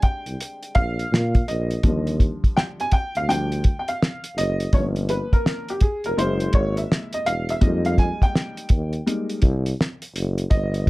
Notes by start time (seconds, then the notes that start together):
Already playing: D3 G3 G#3 C4
0.02 G5, kick, closed hi-hat
0.26 C2, closed hi-hat
0.41 closed hi-hat
0.63 closed hi-hat
0.75 A#1 F5, kick, closed hi-hat
0.99 closed hi-hat
1.12 A#2, snare
1.35 kick, closed hi-hat
1.48 A#1 D#5, closed hi-hat
1.71 closed hi-hat
1.83 D#2 D3 F3 G3, kick, closed hi-hat
2.07 closed hi-hat
2.20 kick, closed hi-hat
2.44 kick, closed hi-hat
2.57 G5, snare
2.80 G#5, closed hi-hat
2.92 G5, kick, closed hi-hat
3.15 D2 F5, closed hi-hat
3.28 F3 G3 D4 G5, closed hi-hat
3.52 closed hi-hat
3.64 kick, closed hi-hat
3.79 G5
3.88 F5, closed hi-hat
4.03 snare
4.24 closed hi-hat
4.37 F#1 D#5, closed hi-hat
4.60 closed hi-hat
4.73 G1 F3 A#3 C#4 C#5, kick, closed hi-hat
4.96 closed hi-hat
5.09 B4, closed hi-hat
5.33 A#4, kick, closed hi-hat
5.46 snare
5.69 G4, closed hi-hat
5.81 G#4, kick, closed hi-hat
6.04 F1 A#4, closed hi-hat
6.17 F#1 G#3 A#3 E4 C5, closed hi-hat
6.40 closed hi-hat
6.53 G#1 C#5, kick, closed hi-hat
6.77 E5, closed hi-hat
6.92 snare
7.13 D#5, closed hi-hat
7.26 E1 F5, closed hi-hat
7.49 E5, closed hi-hat
7.61 F2 G3 G#3 A#3 D#4 D#5, kick, closed hi-hat
7.85 F5, closed hi-hat
7.98 G#5, kick, closed hi-hat
8.22 G5, kick, closed hi-hat
8.36 snare
8.57 closed hi-hat
8.69 D#2, kick, closed hi-hat
8.93 closed hi-hat
9.06 G3 G#3 A#3 D#4, closed hi-hat
9.30 closed hi-hat
9.42 C2, kick, closed hi-hat
9.66 closed hi-hat
9.81 snare
10.02 closed hi-hat
10.15 F#1, closed hi-hat
10.38 closed hi-hat
10.50 G1 D#5, kick, closed hi-hat
10.74 closed hi-hat